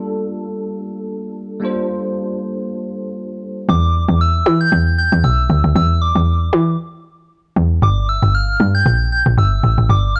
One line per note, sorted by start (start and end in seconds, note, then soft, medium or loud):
0.00 1.57 G3 medium
0.00 1.58 A#3 medium
0.00 1.58 D4 medium
0.00 1.59 F4 medium
0.00 1.59 A4 medium
1.60 3.64 G3 medium
1.60 3.64 A#3 medium
1.60 3.65 D4 medium
1.60 3.66 F4 medium
1.65 3.66 C5 medium
3.69 4.06 E2 loud
3.69 4.23 D6 medium
4.08 4.43 E2 medium
4.21 4.62 E6 loud
4.46 4.70 E3 loud
4.61 4.98 G6 loud
4.72 5.09 E2 medium
4.98 5.25 G6 loud
5.12 5.23 E2 loud
5.24 5.48 B1 medium
5.24 5.75 E6 loud
5.50 5.63 D2 loud
5.64 5.75 D2 medium
5.75 6.12 E2 loud
5.75 6.03 E6 loud
6.02 6.79 D6 medium
6.15 6.50 E2 medium
6.53 6.77 E3 loud
7.56 7.80 E2 medium
7.82 8.19 G1 loud
7.82 8.07 D6 medium
8.09 8.36 E6 loud
8.23 8.57 G1 loud
8.35 8.76 F6 loud
8.60 8.84 G2 loud
8.75 9.12 G6 loud
8.86 9.23 A#1 loud
9.12 9.24 G6 loud
9.26 9.37 A#1 loud
9.37 9.61 G1 loud
9.37 9.91 E6 loud
9.63 9.77 A1 loud
9.78 9.88 A1 medium
9.89 10.20 G1 loud
9.89 10.17 D6 loud
10.16 10.20 F6 loud